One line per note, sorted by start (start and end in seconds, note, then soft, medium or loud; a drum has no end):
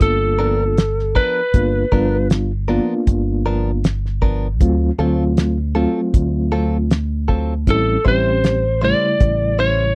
0.00 1.16 G1 medium
0.00 0.75 A#3 medium
0.00 0.75 B3 medium
0.00 0.75 D4 medium
0.00 0.75 F4 medium
0.00 1.20 A4 medium
0.00 kick loud
0.00 closed hi-hat medium
0.39 0.64 F3 medium
0.39 0.64 B3 medium
0.39 0.64 D4 medium
0.39 0.63 A#4 medium
0.77 snare loud
0.77 closed hi-hat medium
0.99 snare soft
1.15 1.41 F3 medium
1.15 1.40 B3 medium
1.15 1.40 D4 medium
1.15 1.40 A#4 medium
1.15 2.27 B4 medium
1.15 kick medium
1.54 1.83 G1 loud
1.54 1.83 A#3 medium
1.54 1.83 B3 medium
1.54 1.83 D4 medium
1.54 1.84 F4 medium
1.54 kick loud
1.54 closed hi-hat medium
1.92 2.78 G1 medium
1.92 2.17 F3 medium
1.92 2.50 G3 medium
1.92 2.50 B3 medium
1.92 2.17 B3 medium
1.92 2.17 D4 medium
1.92 2.50 D4 medium
1.92 2.51 F4 medium
1.92 2.16 A#4 medium
1.92 kick medium
2.30 snare loud
2.30 closed hi-hat medium
2.68 2.94 F3 medium
2.68 3.82 A#3 medium
2.68 2.93 B3 medium
2.68 3.82 B3 medium
2.68 2.93 D4 medium
2.68 3.82 D4 medium
2.68 3.82 F4 medium
2.68 2.93 A#4 medium
3.07 4.61 G1 medium
3.07 kick loud
3.07 closed hi-hat medium
3.46 3.71 F3 medium
3.46 3.70 B3 medium
3.46 3.70 D4 medium
3.46 3.70 A#4 medium
3.84 snare loud
3.84 closed hi-hat medium
4.06 snare soft
4.22 4.47 F3 medium
4.22 4.47 B3 medium
4.22 4.47 D4 medium
4.22 4.46 A#4 medium
4.22 kick medium
4.61 4.89 D2 medium
4.61 4.90 F#3 medium
4.61 4.90 A3 medium
4.61 4.90 C4 medium
4.61 4.90 F4 medium
4.61 kick loud
4.61 closed hi-hat medium
4.99 5.85 D2 medium
4.99 5.57 F#3 medium
4.99 5.24 F#3 medium
4.99 5.57 A3 medium
4.99 5.57 C4 medium
4.99 5.24 C4 medium
4.99 5.57 F4 medium
4.99 5.24 F4 medium
4.99 5.23 A4 medium
5.37 snare loud
5.37 closed hi-hat medium
5.75 6.88 F#3 medium
5.75 6.00 F#3 medium
5.75 6.88 A3 medium
5.75 6.89 C4 medium
5.75 6.00 C4 medium
5.75 6.00 F4 medium
5.75 6.89 F4 medium
5.75 6.00 A4 medium
6.14 7.69 D2 medium
6.14 kick loud
6.14 closed hi-hat medium
6.52 6.77 F#3 medium
6.52 6.77 C4 medium
6.52 6.77 F4 medium
6.52 6.76 A4 medium
6.91 snare loud
6.91 closed hi-hat medium
7.28 7.54 F#3 medium
7.28 7.53 C4 medium
7.28 7.53 F4 medium
7.28 7.53 A4 medium
7.28 kick medium
7.67 7.96 A1 medium
7.67 7.96 G3 medium
7.67 7.96 C4 medium
7.67 7.96 C#4 medium
7.67 7.96 E4 medium
7.67 8.05 A4 medium
7.67 kick loud
7.67 closed hi-hat medium
8.05 8.92 A1 medium
8.05 8.63 G3 medium
8.05 8.30 G3 medium
8.05 8.63 C4 medium
8.05 8.63 C#4 medium
8.05 8.30 C#4 medium
8.05 8.30 E4 medium
8.05 8.64 G4 medium
8.05 8.29 C5 medium
8.05 8.84 C5 medium
8.05 kick medium
8.44 snare loud
8.44 closed hi-hat medium
8.82 9.95 C#3 medium
8.82 9.95 G3 medium
8.82 9.07 G3 soft
8.82 9.95 A3 medium
8.82 9.07 C#4 medium
8.82 9.07 E4 medium
8.82 9.95 E4 medium
8.82 9.06 C5 medium
8.82 9.60 D5 medium
9.20 9.95 A1 medium
9.20 kick loud
9.20 closed hi-hat medium
9.59 9.84 G3 medium
9.59 9.84 C#4 medium
9.59 9.83 E4 medium
9.59 9.83 C5 medium
9.59 9.95 C#5 medium